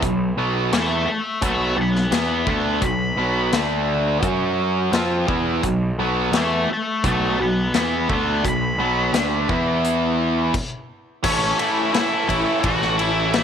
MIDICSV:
0, 0, Header, 1, 7, 480
1, 0, Start_track
1, 0, Key_signature, 2, "minor"
1, 0, Tempo, 699790
1, 21, Time_signature, 4, 2, 24, 8
1, 9215, End_track
2, 0, Start_track
2, 0, Title_t, "Lead electric guitar"
2, 0, Program_c, 0, 29
2, 502, Note_on_c, 0, 76, 88
2, 505, Note_on_c, 0, 81, 98
2, 731, Note_off_c, 0, 81, 0
2, 733, Note_off_c, 0, 76, 0
2, 740, Note_on_c, 0, 76, 73
2, 741, Note_on_c, 0, 81, 70
2, 964, Note_off_c, 0, 76, 0
2, 973, Note_off_c, 0, 81, 0
2, 995, Note_on_c, 0, 76, 90
2, 1002, Note_on_c, 0, 81, 87
2, 1212, Note_off_c, 0, 76, 0
2, 1225, Note_off_c, 0, 81, 0
2, 1241, Note_on_c, 0, 78, 68
2, 1248, Note_on_c, 0, 83, 80
2, 1455, Note_off_c, 0, 78, 0
2, 1465, Note_off_c, 0, 83, 0
2, 1469, Note_on_c, 0, 78, 76
2, 1473, Note_on_c, 0, 83, 89
2, 1689, Note_off_c, 0, 78, 0
2, 1700, Note_off_c, 0, 83, 0
2, 1711, Note_on_c, 0, 78, 77
2, 1714, Note_on_c, 0, 83, 75
2, 1930, Note_off_c, 0, 78, 0
2, 1939, Note_off_c, 0, 83, 0
2, 1958, Note_on_c, 0, 83, 99
2, 2882, Note_off_c, 0, 83, 0
2, 4368, Note_on_c, 0, 76, 85
2, 4372, Note_on_c, 0, 81, 87
2, 4588, Note_off_c, 0, 81, 0
2, 4595, Note_off_c, 0, 76, 0
2, 4615, Note_on_c, 0, 76, 81
2, 4617, Note_on_c, 0, 81, 80
2, 4823, Note_off_c, 0, 76, 0
2, 4832, Note_off_c, 0, 81, 0
2, 4843, Note_on_c, 0, 76, 94
2, 4848, Note_on_c, 0, 81, 85
2, 5057, Note_off_c, 0, 76, 0
2, 5067, Note_off_c, 0, 81, 0
2, 5082, Note_on_c, 0, 78, 82
2, 5090, Note_on_c, 0, 83, 89
2, 5296, Note_off_c, 0, 78, 0
2, 5309, Note_off_c, 0, 83, 0
2, 5331, Note_on_c, 0, 78, 79
2, 5335, Note_on_c, 0, 83, 74
2, 5541, Note_off_c, 0, 78, 0
2, 5550, Note_off_c, 0, 83, 0
2, 5577, Note_on_c, 0, 78, 83
2, 5581, Note_on_c, 0, 83, 83
2, 5784, Note_off_c, 0, 78, 0
2, 5794, Note_off_c, 0, 83, 0
2, 5816, Note_on_c, 0, 83, 108
2, 6731, Note_off_c, 0, 83, 0
2, 7709, Note_on_c, 0, 61, 86
2, 7944, Note_on_c, 0, 64, 87
2, 7952, Note_off_c, 0, 61, 0
2, 8173, Note_off_c, 0, 64, 0
2, 8181, Note_on_c, 0, 64, 90
2, 8417, Note_off_c, 0, 64, 0
2, 8425, Note_on_c, 0, 64, 96
2, 8642, Note_off_c, 0, 64, 0
2, 8644, Note_on_c, 0, 66, 108
2, 8898, Note_off_c, 0, 66, 0
2, 8901, Note_on_c, 0, 64, 90
2, 9215, Note_off_c, 0, 64, 0
2, 9215, End_track
3, 0, Start_track
3, 0, Title_t, "Overdriven electric guitar"
3, 0, Program_c, 1, 29
3, 19, Note_on_c, 1, 47, 57
3, 22, Note_on_c, 1, 54, 81
3, 212, Note_off_c, 1, 47, 0
3, 214, Note_off_c, 1, 54, 0
3, 258, Note_on_c, 1, 47, 82
3, 263, Note_on_c, 1, 54, 86
3, 263, Note_on_c, 1, 59, 83
3, 492, Note_off_c, 1, 47, 0
3, 492, Note_off_c, 1, 59, 0
3, 495, Note_off_c, 1, 54, 0
3, 498, Note_on_c, 1, 52, 84
3, 501, Note_on_c, 1, 59, 88
3, 504, Note_on_c, 1, 64, 91
3, 732, Note_off_c, 1, 52, 0
3, 734, Note_off_c, 1, 59, 0
3, 735, Note_off_c, 1, 64, 0
3, 972, Note_on_c, 1, 47, 86
3, 978, Note_on_c, 1, 54, 93
3, 979, Note_on_c, 1, 59, 107
3, 1204, Note_off_c, 1, 47, 0
3, 1207, Note_off_c, 1, 54, 0
3, 1213, Note_off_c, 1, 59, 0
3, 1213, Note_on_c, 1, 47, 63
3, 1215, Note_on_c, 1, 54, 78
3, 1409, Note_off_c, 1, 47, 0
3, 1410, Note_off_c, 1, 54, 0
3, 1449, Note_on_c, 1, 52, 84
3, 1456, Note_on_c, 1, 59, 93
3, 1458, Note_on_c, 1, 64, 97
3, 1688, Note_off_c, 1, 52, 0
3, 1691, Note_off_c, 1, 59, 0
3, 1692, Note_off_c, 1, 64, 0
3, 1695, Note_on_c, 1, 50, 98
3, 1701, Note_on_c, 1, 57, 104
3, 1704, Note_on_c, 1, 62, 100
3, 1931, Note_off_c, 1, 50, 0
3, 1934, Note_off_c, 1, 57, 0
3, 1936, Note_off_c, 1, 62, 0
3, 1937, Note_on_c, 1, 47, 69
3, 1939, Note_on_c, 1, 54, 72
3, 2131, Note_off_c, 1, 47, 0
3, 2132, Note_off_c, 1, 54, 0
3, 2177, Note_on_c, 1, 47, 82
3, 2182, Note_on_c, 1, 54, 83
3, 2184, Note_on_c, 1, 59, 81
3, 2412, Note_off_c, 1, 47, 0
3, 2415, Note_off_c, 1, 54, 0
3, 2415, Note_off_c, 1, 59, 0
3, 2425, Note_on_c, 1, 50, 81
3, 2428, Note_on_c, 1, 57, 90
3, 2432, Note_on_c, 1, 62, 104
3, 2901, Note_off_c, 1, 50, 0
3, 2901, Note_on_c, 1, 54, 88
3, 2906, Note_off_c, 1, 57, 0
3, 2906, Note_on_c, 1, 61, 106
3, 2907, Note_off_c, 1, 62, 0
3, 2907, Note_on_c, 1, 66, 106
3, 3374, Note_off_c, 1, 54, 0
3, 3376, Note_off_c, 1, 61, 0
3, 3377, Note_off_c, 1, 66, 0
3, 3384, Note_on_c, 1, 53, 85
3, 3386, Note_on_c, 1, 60, 98
3, 3388, Note_on_c, 1, 65, 100
3, 3614, Note_off_c, 1, 53, 0
3, 3616, Note_off_c, 1, 60, 0
3, 3617, Note_on_c, 1, 52, 103
3, 3618, Note_off_c, 1, 65, 0
3, 3619, Note_on_c, 1, 59, 93
3, 3624, Note_on_c, 1, 64, 115
3, 3852, Note_off_c, 1, 52, 0
3, 3853, Note_off_c, 1, 59, 0
3, 3855, Note_off_c, 1, 64, 0
3, 3866, Note_on_c, 1, 47, 62
3, 3868, Note_on_c, 1, 54, 68
3, 4056, Note_off_c, 1, 47, 0
3, 4057, Note_off_c, 1, 54, 0
3, 4109, Note_on_c, 1, 47, 80
3, 4113, Note_on_c, 1, 59, 92
3, 4115, Note_on_c, 1, 54, 89
3, 4338, Note_off_c, 1, 47, 0
3, 4340, Note_off_c, 1, 59, 0
3, 4341, Note_off_c, 1, 54, 0
3, 4349, Note_on_c, 1, 52, 97
3, 4349, Note_on_c, 1, 59, 84
3, 4353, Note_on_c, 1, 64, 101
3, 4578, Note_off_c, 1, 52, 0
3, 4578, Note_off_c, 1, 59, 0
3, 4580, Note_off_c, 1, 64, 0
3, 4832, Note_on_c, 1, 47, 88
3, 4834, Note_on_c, 1, 54, 106
3, 4839, Note_on_c, 1, 59, 98
3, 5060, Note_off_c, 1, 47, 0
3, 5061, Note_off_c, 1, 54, 0
3, 5063, Note_off_c, 1, 59, 0
3, 5073, Note_on_c, 1, 47, 68
3, 5077, Note_on_c, 1, 54, 74
3, 5259, Note_off_c, 1, 47, 0
3, 5261, Note_off_c, 1, 54, 0
3, 5313, Note_on_c, 1, 52, 80
3, 5315, Note_on_c, 1, 59, 96
3, 5317, Note_on_c, 1, 64, 98
3, 5540, Note_off_c, 1, 52, 0
3, 5541, Note_off_c, 1, 59, 0
3, 5542, Note_off_c, 1, 64, 0
3, 5551, Note_on_c, 1, 50, 94
3, 5554, Note_on_c, 1, 57, 100
3, 5555, Note_on_c, 1, 62, 105
3, 5779, Note_off_c, 1, 50, 0
3, 5781, Note_off_c, 1, 57, 0
3, 5781, Note_off_c, 1, 62, 0
3, 5788, Note_on_c, 1, 47, 72
3, 5792, Note_on_c, 1, 54, 63
3, 5977, Note_off_c, 1, 47, 0
3, 5979, Note_off_c, 1, 54, 0
3, 6031, Note_on_c, 1, 47, 88
3, 6036, Note_on_c, 1, 54, 91
3, 6038, Note_on_c, 1, 59, 100
3, 6259, Note_off_c, 1, 47, 0
3, 6261, Note_off_c, 1, 54, 0
3, 6262, Note_off_c, 1, 59, 0
3, 6272, Note_on_c, 1, 50, 93
3, 6272, Note_on_c, 1, 57, 89
3, 6275, Note_on_c, 1, 62, 108
3, 6500, Note_off_c, 1, 50, 0
3, 6500, Note_off_c, 1, 57, 0
3, 6501, Note_off_c, 1, 62, 0
3, 6513, Note_on_c, 1, 52, 87
3, 6518, Note_on_c, 1, 59, 95
3, 6518, Note_on_c, 1, 64, 102
3, 7220, Note_off_c, 1, 52, 0
3, 7223, Note_off_c, 1, 59, 0
3, 7223, Note_off_c, 1, 64, 0
3, 7707, Note_on_c, 1, 45, 93
3, 7713, Note_on_c, 1, 52, 96
3, 7715, Note_on_c, 1, 57, 103
3, 7718, Note_on_c, 1, 61, 109
3, 7719, Note_on_c, 1, 69, 98
3, 7945, Note_off_c, 1, 45, 0
3, 7945, Note_off_c, 1, 52, 0
3, 7947, Note_off_c, 1, 57, 0
3, 7951, Note_off_c, 1, 61, 0
3, 7952, Note_off_c, 1, 69, 0
3, 7953, Note_on_c, 1, 45, 79
3, 7953, Note_on_c, 1, 52, 82
3, 7955, Note_on_c, 1, 57, 83
3, 7959, Note_on_c, 1, 61, 87
3, 7960, Note_on_c, 1, 69, 92
3, 8177, Note_off_c, 1, 45, 0
3, 8178, Note_off_c, 1, 52, 0
3, 8182, Note_off_c, 1, 57, 0
3, 8183, Note_off_c, 1, 61, 0
3, 8185, Note_off_c, 1, 69, 0
3, 8185, Note_on_c, 1, 45, 96
3, 8187, Note_on_c, 1, 52, 95
3, 8190, Note_on_c, 1, 57, 95
3, 8191, Note_on_c, 1, 61, 97
3, 8193, Note_on_c, 1, 69, 105
3, 8417, Note_off_c, 1, 45, 0
3, 8421, Note_off_c, 1, 52, 0
3, 8421, Note_off_c, 1, 57, 0
3, 8425, Note_off_c, 1, 61, 0
3, 8425, Note_on_c, 1, 45, 77
3, 8426, Note_off_c, 1, 69, 0
3, 8429, Note_on_c, 1, 52, 79
3, 8430, Note_on_c, 1, 57, 80
3, 8433, Note_on_c, 1, 61, 90
3, 8435, Note_on_c, 1, 69, 87
3, 8659, Note_off_c, 1, 45, 0
3, 8660, Note_off_c, 1, 52, 0
3, 8662, Note_off_c, 1, 57, 0
3, 8662, Note_off_c, 1, 61, 0
3, 8663, Note_off_c, 1, 69, 0
3, 8667, Note_on_c, 1, 45, 83
3, 8669, Note_on_c, 1, 52, 102
3, 8670, Note_on_c, 1, 57, 95
3, 8671, Note_on_c, 1, 61, 100
3, 8671, Note_on_c, 1, 69, 91
3, 8900, Note_off_c, 1, 45, 0
3, 8902, Note_off_c, 1, 52, 0
3, 8904, Note_off_c, 1, 61, 0
3, 8905, Note_off_c, 1, 57, 0
3, 8908, Note_off_c, 1, 69, 0
3, 8908, Note_on_c, 1, 45, 86
3, 8910, Note_on_c, 1, 52, 80
3, 8913, Note_on_c, 1, 57, 105
3, 8913, Note_on_c, 1, 61, 89
3, 8916, Note_on_c, 1, 69, 110
3, 9142, Note_off_c, 1, 45, 0
3, 9146, Note_off_c, 1, 57, 0
3, 9147, Note_off_c, 1, 52, 0
3, 9150, Note_on_c, 1, 45, 88
3, 9151, Note_off_c, 1, 61, 0
3, 9151, Note_off_c, 1, 69, 0
3, 9154, Note_on_c, 1, 57, 98
3, 9155, Note_on_c, 1, 52, 100
3, 9159, Note_on_c, 1, 61, 91
3, 9159, Note_on_c, 1, 69, 96
3, 9215, Note_off_c, 1, 45, 0
3, 9215, Note_off_c, 1, 52, 0
3, 9215, Note_off_c, 1, 57, 0
3, 9215, Note_off_c, 1, 61, 0
3, 9215, Note_off_c, 1, 69, 0
3, 9215, End_track
4, 0, Start_track
4, 0, Title_t, "Picked electric bass"
4, 0, Program_c, 2, 34
4, 15, Note_on_c, 2, 35, 82
4, 241, Note_off_c, 2, 35, 0
4, 253, Note_on_c, 2, 35, 85
4, 480, Note_off_c, 2, 35, 0
4, 495, Note_on_c, 2, 40, 95
4, 721, Note_off_c, 2, 40, 0
4, 976, Note_on_c, 2, 35, 92
4, 1201, Note_off_c, 2, 35, 0
4, 1207, Note_on_c, 2, 35, 86
4, 1437, Note_off_c, 2, 35, 0
4, 1453, Note_on_c, 2, 40, 83
4, 1680, Note_off_c, 2, 40, 0
4, 1693, Note_on_c, 2, 38, 93
4, 1920, Note_off_c, 2, 38, 0
4, 1933, Note_on_c, 2, 35, 82
4, 2160, Note_off_c, 2, 35, 0
4, 2170, Note_on_c, 2, 35, 89
4, 2398, Note_off_c, 2, 35, 0
4, 2417, Note_on_c, 2, 38, 98
4, 2871, Note_off_c, 2, 38, 0
4, 2897, Note_on_c, 2, 42, 101
4, 3352, Note_off_c, 2, 42, 0
4, 3374, Note_on_c, 2, 41, 97
4, 3601, Note_off_c, 2, 41, 0
4, 3624, Note_on_c, 2, 40, 98
4, 3846, Note_off_c, 2, 40, 0
4, 3860, Note_on_c, 2, 35, 85
4, 4084, Note_off_c, 2, 35, 0
4, 4104, Note_on_c, 2, 35, 99
4, 4326, Note_off_c, 2, 35, 0
4, 4332, Note_on_c, 2, 40, 88
4, 4560, Note_off_c, 2, 40, 0
4, 4826, Note_on_c, 2, 35, 95
4, 5047, Note_off_c, 2, 35, 0
4, 5069, Note_on_c, 2, 35, 81
4, 5289, Note_off_c, 2, 35, 0
4, 5308, Note_on_c, 2, 40, 80
4, 5528, Note_off_c, 2, 40, 0
4, 5552, Note_on_c, 2, 38, 96
4, 5770, Note_off_c, 2, 38, 0
4, 5790, Note_on_c, 2, 35, 85
4, 6009, Note_off_c, 2, 35, 0
4, 6021, Note_on_c, 2, 35, 102
4, 6245, Note_off_c, 2, 35, 0
4, 6260, Note_on_c, 2, 38, 98
4, 6484, Note_off_c, 2, 38, 0
4, 6510, Note_on_c, 2, 40, 104
4, 7198, Note_off_c, 2, 40, 0
4, 7711, Note_on_c, 2, 33, 98
4, 7895, Note_off_c, 2, 33, 0
4, 8426, Note_on_c, 2, 33, 99
4, 8518, Note_off_c, 2, 33, 0
4, 8669, Note_on_c, 2, 33, 94
4, 9215, Note_off_c, 2, 33, 0
4, 9215, End_track
5, 0, Start_track
5, 0, Title_t, "Muted overdriven electric guitar strokes"
5, 735, Note_on_c, 9, 29, 51
5, 804, Note_off_c, 9, 29, 0
5, 4596, Note_on_c, 9, 29, 58
5, 4664, Note_off_c, 9, 29, 0
5, 9215, End_track
6, 0, Start_track
6, 0, Title_t, "Muted picked electric bass strokes"
6, 738, Note_on_c, 9, 29, 39
6, 806, Note_off_c, 9, 29, 0
6, 4587, Note_on_c, 9, 29, 42
6, 4656, Note_off_c, 9, 29, 0
6, 9215, End_track
7, 0, Start_track
7, 0, Title_t, "Drums"
7, 17, Note_on_c, 9, 36, 98
7, 17, Note_on_c, 9, 42, 73
7, 86, Note_off_c, 9, 36, 0
7, 86, Note_off_c, 9, 42, 0
7, 499, Note_on_c, 9, 42, 77
7, 503, Note_on_c, 9, 38, 118
7, 568, Note_off_c, 9, 42, 0
7, 571, Note_off_c, 9, 38, 0
7, 975, Note_on_c, 9, 42, 67
7, 976, Note_on_c, 9, 36, 109
7, 1043, Note_off_c, 9, 42, 0
7, 1044, Note_off_c, 9, 36, 0
7, 1342, Note_on_c, 9, 38, 32
7, 1410, Note_off_c, 9, 38, 0
7, 1455, Note_on_c, 9, 42, 69
7, 1458, Note_on_c, 9, 38, 101
7, 1524, Note_off_c, 9, 42, 0
7, 1527, Note_off_c, 9, 38, 0
7, 1693, Note_on_c, 9, 36, 112
7, 1762, Note_off_c, 9, 36, 0
7, 1934, Note_on_c, 9, 36, 106
7, 1934, Note_on_c, 9, 42, 77
7, 2002, Note_off_c, 9, 36, 0
7, 2002, Note_off_c, 9, 42, 0
7, 2419, Note_on_c, 9, 42, 74
7, 2423, Note_on_c, 9, 38, 108
7, 2488, Note_off_c, 9, 42, 0
7, 2491, Note_off_c, 9, 38, 0
7, 2899, Note_on_c, 9, 36, 106
7, 2900, Note_on_c, 9, 42, 69
7, 2968, Note_off_c, 9, 36, 0
7, 2969, Note_off_c, 9, 42, 0
7, 3382, Note_on_c, 9, 42, 62
7, 3385, Note_on_c, 9, 38, 106
7, 3451, Note_off_c, 9, 42, 0
7, 3454, Note_off_c, 9, 38, 0
7, 3625, Note_on_c, 9, 36, 118
7, 3693, Note_off_c, 9, 36, 0
7, 3865, Note_on_c, 9, 36, 90
7, 3865, Note_on_c, 9, 42, 76
7, 3933, Note_off_c, 9, 36, 0
7, 3934, Note_off_c, 9, 42, 0
7, 4344, Note_on_c, 9, 42, 71
7, 4348, Note_on_c, 9, 38, 112
7, 4413, Note_off_c, 9, 42, 0
7, 4416, Note_off_c, 9, 38, 0
7, 4829, Note_on_c, 9, 36, 106
7, 4830, Note_on_c, 9, 42, 78
7, 4897, Note_off_c, 9, 36, 0
7, 4898, Note_off_c, 9, 42, 0
7, 5310, Note_on_c, 9, 42, 71
7, 5314, Note_on_c, 9, 38, 106
7, 5379, Note_off_c, 9, 42, 0
7, 5382, Note_off_c, 9, 38, 0
7, 5553, Note_on_c, 9, 36, 106
7, 5621, Note_off_c, 9, 36, 0
7, 5793, Note_on_c, 9, 36, 107
7, 5798, Note_on_c, 9, 42, 79
7, 5861, Note_off_c, 9, 36, 0
7, 5867, Note_off_c, 9, 42, 0
7, 6269, Note_on_c, 9, 42, 82
7, 6273, Note_on_c, 9, 38, 121
7, 6338, Note_off_c, 9, 42, 0
7, 6341, Note_off_c, 9, 38, 0
7, 6511, Note_on_c, 9, 36, 98
7, 6580, Note_off_c, 9, 36, 0
7, 6754, Note_on_c, 9, 42, 73
7, 6823, Note_off_c, 9, 42, 0
7, 7231, Note_on_c, 9, 36, 107
7, 7232, Note_on_c, 9, 49, 94
7, 7299, Note_off_c, 9, 36, 0
7, 7301, Note_off_c, 9, 49, 0
7, 7709, Note_on_c, 9, 36, 123
7, 7709, Note_on_c, 9, 49, 127
7, 7777, Note_off_c, 9, 36, 0
7, 7778, Note_off_c, 9, 49, 0
7, 7952, Note_on_c, 9, 51, 78
7, 8020, Note_off_c, 9, 51, 0
7, 8192, Note_on_c, 9, 51, 105
7, 8196, Note_on_c, 9, 38, 103
7, 8261, Note_off_c, 9, 51, 0
7, 8264, Note_off_c, 9, 38, 0
7, 8430, Note_on_c, 9, 36, 70
7, 8436, Note_on_c, 9, 51, 73
7, 8499, Note_off_c, 9, 36, 0
7, 8504, Note_off_c, 9, 51, 0
7, 8667, Note_on_c, 9, 51, 107
7, 8670, Note_on_c, 9, 36, 114
7, 8736, Note_off_c, 9, 51, 0
7, 8738, Note_off_c, 9, 36, 0
7, 8793, Note_on_c, 9, 38, 29
7, 8862, Note_off_c, 9, 38, 0
7, 8911, Note_on_c, 9, 51, 66
7, 8979, Note_off_c, 9, 51, 0
7, 9148, Note_on_c, 9, 51, 97
7, 9151, Note_on_c, 9, 38, 114
7, 9215, Note_off_c, 9, 38, 0
7, 9215, Note_off_c, 9, 51, 0
7, 9215, End_track
0, 0, End_of_file